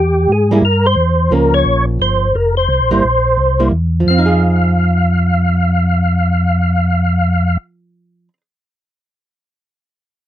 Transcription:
Already playing: tonewheel organ E2 G4
0.29 tonewheel organ G#2 G#4
0.51 hollow-body jazz guitar G3 A#3 E4
0.62 tonewheel organ G2 A#4
0.87 tonewheel organ C5
0.96 tonewheel organ E2
1.31 tonewheel organ C#2 A#4, hollow-body jazz guitar F3 A#3 C#4
1.54 tonewheel organ C#5
1.65 tonewheel organ A#1
2.00 tonewheel organ G1 C5
2.35 tonewheel organ F1 A#4
2.57 tonewheel organ C5
2.69 tonewheel organ C2
2.80 tonewheel organ A#1
2.91 tonewheel organ G1, hollow-body jazz guitar G3 A#3 E4
3.04 tonewheel organ A#1
3.37 tonewheel organ C2
3.59 hollow-body jazz guitar G3 A#3 E4
3.71 tonewheel organ E2
4.00 hollow-body jazz guitar F3
4.07 tonewheel organ F2 F5, hollow-body jazz guitar C4
4.18 hollow-body jazz guitar D#4
4.26 hollow-body jazz guitar G#4

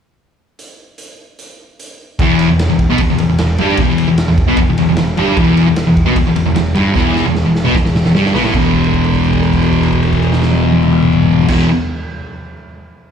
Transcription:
0.59 closed hi-hat
0.98 closed hi-hat
1.39 closed hi-hat
1.79 closed hi-hat
2.19 picked electric bass E1, distorted electric guitar E2 E3, kick, ride
2.39 ride
2.49 picked electric bass E1, distorted electric guitar E2
2.59 snare, ride
2.70 picked electric bass E1, distorted electric guitar E2
2.79 kick, ride
2.90 picked electric bass B1, distorted electric guitar B2 B3
2.98 picked electric bass E1, distorted electric guitar E2, kick, ride
3.10 picked electric bass E1, distorted electric guitar E2
3.18 picked electric bass E1, distorted electric guitar E2, ride
3.29 picked electric bass E1, distorted electric guitar E2
3.38 picked electric bass E1, distorted electric guitar E2, snare, ride
3.58 picked electric bass G1, distorted electric guitar G2 G3, ride
3.77 picked electric bass E1, distorted electric guitar E2 E3, kick, ride
3.98 ride
4.09 picked electric bass E1, distorted electric guitar E2
4.18 snare, ride
4.28 picked electric bass E1, distorted electric guitar E2
4.38 kick, ride
4.48 picked electric bass B1, distorted electric guitar B2 B3
4.57 picked electric bass E1, distorted electric guitar E2, kick, ride
4.69 picked electric bass E1, distorted electric guitar E2
4.78 picked electric bass E1, distorted electric guitar E2, ride
4.89 picked electric bass E1, distorted electric guitar E2
4.97 picked electric bass E1, distorted electric guitar E2, snare, ride
5.17 picked electric bass G1, distorted electric guitar G2 G3, ride
5.37 picked electric bass E1, distorted electric guitar E2 E3, kick, ride
5.57 ride
5.67 picked electric bass E1, distorted electric guitar E2
5.76 snare, ride
5.87 picked electric bass E1, distorted electric guitar E2
5.96 kick, ride
6.06 picked electric bass B1, distorted electric guitar B2 B3
6.16 picked electric bass E1, distorted electric guitar E2, kick, ride
6.27 picked electric bass E1, distorted electric guitar E2
6.36 picked electric bass E1, distorted electric guitar E2, ride
6.46 picked electric bass E1, distorted electric guitar E2
6.55 picked electric bass E1, distorted electric guitar E2, snare, ride
6.75 picked electric bass G1, distorted electric guitar G2 G3, ride
6.94 picked electric bass E1, distorted electric guitar E2 E3, kick, snare
7.16 snare
7.25 picked electric bass E1, distorted electric guitar E2
7.36 snare
7.45 picked electric bass E1, distorted electric guitar E2
7.55 snare
7.65 picked electric bass B1, distorted electric guitar B2 B3
7.75 picked electric bass E1, distorted electric guitar E2, kick, snare
7.85 picked electric bass E1, distorted electric guitar E2, snare
7.95 picked electric bass E1, distorted electric guitar E2, snare
8.05 picked electric bass E1, distorted electric guitar E2, snare
8.14 picked electric bass G1, distorted electric guitar G2 G3, snare
8.26 snare
8.33 picked electric bass B1, distorted electric guitar B2 B3, snare
8.43 picked electric bass A1, distorted electric guitar A2 A3, snare
8.54 picked electric bass E1, distorted electric guitar E2 B2 E3, kick, crash
8.74 kick, crash
8.84 crash
8.93 kick, crash
9.04 crash
9.14 kick, crash
9.24 crash
9.33 kick, crash
9.43 crash
9.53 kick, crash
9.62 crash
9.73 kick, crash
9.83 crash
9.93 kick, crash
10.03 crash
10.13 kick, crash
10.22 crash
10.33 snare
10.42 snare
10.53 high tom
10.63 high tom
10.72 high tom
10.83 mid tom
10.92 mid tom
11.02 mid tom
11.13 mid tom
11.22 mid tom
11.33 floor tom
11.42 floor tom
11.48 picked electric bass E1, distorted electric guitar E2 B2 E3, kick, snare, crash

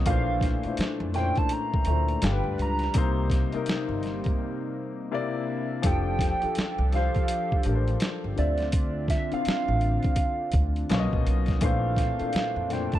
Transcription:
0.06 upright bass A#1, grand piano A#2 E3 A3 D4 C5, analog synth pad A3 D4, analog synth lead F5, kick, closed hi-hat
0.41 kick, snare, closed hi-hat
0.63 grand piano A#2 A3 D4 E4, muted upright bass stroke, closed hi-hat
0.68 grand piano C5
0.77 muted upright bass stroke, snare, closed hi-hat
1.00 upright bass F2
1.14 grand piano A#2 A3 C#4 E4 C5, analog synth lead G5, snare, closed hi-hat
1.22 grand piano D4
1.36 analog synth lead A5, kick, closed hi-hat
1.49 analog synth lead A#5, closed hi-hat
1.74 kick
1.85 upright bass D2, grand piano A#2 A3, closed hi-hat
1.89 grand piano D4 E4 C5
2.08 closed hi-hat
2.22 upright bass G1, grand piano G3 D4 F4 A4, analog synth pad G3 D4 F4 B4, analog synth lead G5, snare, closed hi-hat
2.32 grand piano B4
2.44 upright bass D2
2.58 upright bass C#2, analog synth lead A#5, closed hi-hat
2.79 snare, closed hi-hat
2.94 upright bass C2, grand piano C3 A#3 D#4 C5, analog synth pad C3 G3 A#3 D#4, kick, closed hi-hat
3.30 kick, snare, closed hi-hat
3.52 grand piano C3 A#3 D#4, muted upright bass stroke, closed hi-hat
3.57 grand piano A#4
3.66 muted upright bass stroke, snare, closed hi-hat
3.89 upright bass G1
4.03 snare, closed hi-hat
4.24 kick, closed hi-hat
5.11 grand piano C3 A#3 E4 D5, analog synth pad D4 E4
5.82 upright bass F1, grand piano F3 D4 G4 A4, analog synth pad F3 G4 A4, kick, closed hi-hat
5.87 analog synth lead G5
6.19 kick, snare, closed hi-hat
6.41 grand piano F3 D4 G4 A4, muted upright bass stroke, closed hi-hat
6.55 muted upright bass stroke, snare, closed hi-hat
6.78 upright bass C2
6.92 grand piano F3 D4 G4 C5, analog synth lead F5, snare, closed hi-hat
7.15 kick, closed hi-hat
7.28 closed hi-hat
7.52 kick
7.63 upright bass A1, grand piano F3 D4 G4, closed hi-hat
7.69 grand piano A#4
7.75 grand piano C5
7.88 closed hi-hat
8.00 snare, closed hi-hat
8.24 upright bass G1
8.36 upright bass D2, grand piano D3 C4 F4 E5, analog synth pad D3 C4 D4 F4, analog synth lead D5, closed hi-hat
8.58 snare, closed hi-hat
8.72 kick, closed hi-hat
9.08 analog synth lead E5, kick, snare, closed hi-hat
9.31 grand piano D3 C4 E4 F5, analog synth lead F5, muted upright bass stroke, closed hi-hat
9.40 grand piano F4
9.45 muted upright bass stroke, snare, closed hi-hat
9.68 upright bass A1
9.81 closed hi-hat
10.03 kick, closed hi-hat
10.16 kick, closed hi-hat
10.52 upright bass D2, kick, closed hi-hat
10.76 closed hi-hat
10.89 upright bass B1, analog synth pad B2 D#4, grand piano B2 A#3 C#4 F4, snare, closed hi-hat
10.94 grand piano C#5
10.99 grand piano D#5
11.13 upright bass A#1, kick
11.26 upright bass B1, closed hi-hat
11.46 kick, snare, closed hi-hat
11.61 upright bass A#1, grand piano A#2 E3 A3 D4 C5, analog synth pad C4 D4, analog synth lead F5, kick, closed hi-hat
11.96 kick, snare, closed hi-hat
12.19 grand piano A#2 E3 D4 A4 A#4, muted upright bass stroke, closed hi-hat
12.33 muted upright bass stroke, snare, closed hi-hat
12.56 upright bass F2
12.69 grand piano A#2 A3 D4 E4 C5, analog synth lead G5, snare, closed hi-hat
12.92 analog synth lead A5, kick, closed hi-hat

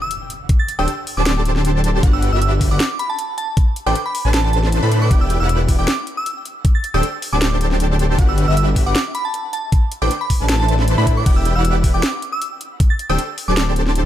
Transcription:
Already playing: impact
0.02 synth bell E6
0.11 closed hi-hat
0.30 closed hi-hat
0.49 kick, closed hi-hat
0.59 synth bell A6
0.69 closed hi-hat
0.79 detuned saw bass D1, supersaw synth D4 G4 A4 C5 G5, synth pluck G5, synth bell E6
0.88 closed hi-hat
1.07 open hi-hat
1.17 detuned saw bass D1, supersaw synth D4 G4 A4 C5 A5, synth pluck A5, synth bell D6
1.26 synth bell D6, snare, closed hi-hat
1.45 closed hi-hat
1.56 snare
1.65 closed hi-hat
1.84 closed hi-hat
2.03 detuned saw bass G1, supersaw synth D4 F#4 G4 B4 F#5, synth pluck F#5, kick, closed hi-hat
2.13 synth bell E6
2.22 closed hi-hat
2.33 detuned saw bass G1, supersaw synth D4 F#4 G4 B4 E5, synth pluck E5, synth bell E6
2.42 synth bell E6, closed hi-hat
2.61 kick, open hi-hat
2.71 detuned saw bass G1, supersaw synth D4 F#4 G4 B4 F#5, synth pluck F#5, synth bell D6
2.80 synth bell D6, snare, closed hi-hat
2.99 synth bell B5, closed hi-hat
3.10 synth bell A5
3.19 closed hi-hat
3.38 synth bell A5, closed hi-hat
3.57 kick, closed hi-hat
3.76 closed hi-hat
3.86 detuned saw bass A1, supersaw synth D4 A4 B4 C5 G5, synth pluck G5, synth bell D6
3.95 closed hi-hat
4.06 synth bell B5
4.15 open hi-hat
4.25 detuned saw bass A1, supersaw synth D4 A4 B4 C5 A5, synth pluck A5
4.34 synth bell A5, snare, closed hi-hat
4.44 synth bell A5
4.53 synth bell A5, closed hi-hat
4.63 snare
4.72 closed hi-hat
4.83 detuned saw bass A2, supersaw synth D4 A4 B4 C5 B5, synth pluck B5
4.92 closed hi-hat
5.02 synth bell D6
5.11 detuned saw bass E1, supersaw synth E4 G4 B4 D5 G5, synth pluck G5, kick, closed hi-hat
5.21 synth bell E6
5.30 closed hi-hat
5.40 detuned saw bass E1, supersaw synth E4 G4 B4 D5 F#5, synth pluck F#5, synth bell E6
5.49 synth bell E6, closed hi-hat
5.69 kick, open hi-hat
5.79 detuned saw bass E1, supersaw synth E4 G4 B4 D5 G5, synth pluck G5, synth bell D6
5.88 synth bell D6, snare, closed hi-hat
6.07 closed hi-hat
6.17 synth bell E6
6.26 closed hi-hat
6.45 closed hi-hat
6.65 kick, closed hi-hat
6.75 synth bell A6
6.84 closed hi-hat
6.94 detuned saw bass D1, supersaw synth D4 G4 A4 C5 G5, synth pluck G5, synth bell E6
7.03 closed hi-hat
7.22 open hi-hat
7.33 detuned saw bass D1, supersaw synth D4 G4 A4 C5 A5, synth pluck A5, synth bell D6
7.42 synth bell D6, snare, closed hi-hat
7.61 closed hi-hat
7.71 snare
7.80 closed hi-hat
7.99 closed hi-hat
8.18 detuned saw bass G1, supersaw synth D4 F#4 G4 B4 F#5, synth pluck F#5, kick, closed hi-hat
8.29 synth bell E6
8.38 closed hi-hat
8.48 detuned saw bass G1, supersaw synth D4 F#4 G4 B4 E5, synth pluck E5, synth bell E6
8.57 synth bell E6, closed hi-hat
8.76 kick, open hi-hat
8.86 detuned saw bass G1, supersaw synth D4 F#4 G4 B4 F#5, synth pluck F#5, synth bell D6
8.95 synth bell D6, snare, closed hi-hat
9.15 synth bell B5, closed hi-hat
9.25 synth bell A5
9.34 closed hi-hat
9.53 synth bell A5, closed hi-hat
9.72 kick, closed hi-hat
9.92 closed hi-hat
10.02 detuned saw bass A1, supersaw synth D4 A4 B4 C5 G5, synth pluck G5, synth bell D6
10.11 closed hi-hat
10.21 synth bell B5
10.30 kick, open hi-hat
10.40 detuned saw bass A1, supersaw synth D4 A4 B4 C5 A5, synth pluck A5
10.49 synth bell A5, snare, closed hi-hat, swell
10.60 synth bell A5
10.68 synth bell A5, closed hi-hat
10.79 snare
10.88 closed hi-hat
10.98 detuned saw bass A2, supersaw synth D4 A4 B4 C5 B5, synth pluck B5
11.07 kick, closed hi-hat
11.17 synth bell D6
11.26 detuned saw bass E1, supersaw synth E4 G4 B4 D5 G5, synth pluck G5, kick, closed hi-hat, crash
11.36 synth bell E6
11.45 closed hi-hat
11.56 detuned saw bass E1, supersaw synth E4 G4 B4 D5 F#5, synth pluck F#5, synth bell E6
11.65 synth bell E6, closed hi-hat
11.84 kick, open hi-hat
11.94 detuned saw bass E1, supersaw synth E4 G4 B4 D5 G5, synth pluck G5, synth bell D6
12.03 synth bell D6, snare, closed hi-hat
12.22 closed hi-hat
12.32 synth bell E6
12.42 closed hi-hat
12.61 closed hi-hat
12.80 kick, closed hi-hat
12.90 synth bell A6
12.99 closed hi-hat
13.09 detuned saw bass D1, supersaw synth D4 G4 A4 C5 G5, synth pluck G5, synth bell E6
13.19 closed hi-hat
13.38 open hi-hat
13.48 detuned saw bass D1, supersaw synth D4 G4 A4 C5 A5, synth pluck A5, synth bell D6
13.57 synth bell D6, snare, closed hi-hat
13.76 closed hi-hat
13.86 snare
13.95 closed hi-hat

